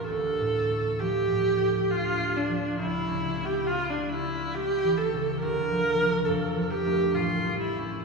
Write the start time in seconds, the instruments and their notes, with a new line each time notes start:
Already playing: harp A1 E3 A3 C#4
0.07 harp D2, viola A4
0.39 harp A2
0.70 harp A3
0.99 harp F3, viola G4
1.30 harp A2
1.60 harp A3
1.90 harp D4, viola F4
2.19 harp A3
2.36 viola D4
2.49 harp F3
2.78 harp C#2, viola E4
3.07 harp C#3
3.36 harp A3
3.45 viola G4
3.66 harp E4, viola F4
3.90 viola D4
3.95 harp A3
4.09 viola E4
4.26 harp E4
4.54 harp A3, viola G4
4.84 harp E3
4.98 viola A4
5.14 harp C#3
5.41 harp D2, viola A#4
5.71 harp F3
6.00 harp A3 D4
6.25 harp F2, viola A4
6.57 harp F3
6.70 viola G4
6.85 harp A3 D4
7.15 harp A1, viola F4
7.46 harp G3
7.60 viola E4
7.77 harp A3 C#4